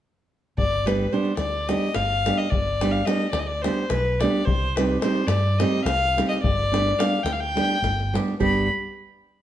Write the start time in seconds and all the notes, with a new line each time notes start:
0.57 G1 D5, davul low
0.86 G3 B3 D4 G4 B4, davul high
1.12 G3 B3 D4 G4 C5
1.25 davul high
1.37 D2 D5, davul high
1.68 G3 B3 D4 G4 D#5, davul high
1.94 G1 F5, davul high
2.26 G3 B3 D4 G4, davul high
2.37 D#5
2.50 G1 D5, davul low
2.81 G3 B3 D4 G4, davul high
2.92 F5
3.05 G3 B3 D4 G4 D#5, davul high
3.20 davul high
3.31 D2 D5, davul high
3.39 D#5
3.47 D5
3.62 G3 B3 D4 G4 C5, davul high
3.89 B1 B4, davul high
4.20 G3 B3 D4 G4 D5, davul high
4.45 C2 C5, davul low
4.76 G3 C4 D#4 G4 B4, davul high
5.01 G3 C4 C5, davul high
5.05 D#4 G4
5.15 davul high
5.27 G2 D5, davul high
5.59 G3 C4 D#4 G4 D#5, davul high
5.84 C2 F5, davul high
6.17 G3 C4 D#4 G4, davul high
6.29 D#5
6.42 G1 D5, davul low
6.59 davul high
6.72 G3 B3 D4 G4, davul high
6.87 davul high
6.99 G3 B3 D4 G4 F5, davul high
7.23 D2 G5, davul high
7.32 F5
7.41 G5
7.55 G3 B3 D4 G4, davul high
7.71 davul high
7.82 G1, davul high, davul low
8.00 davul high
8.13 G3 B3 D4 G4, davul high
8.28 davul high
8.40 G1 G3 B3 D4 G4 B5, davul low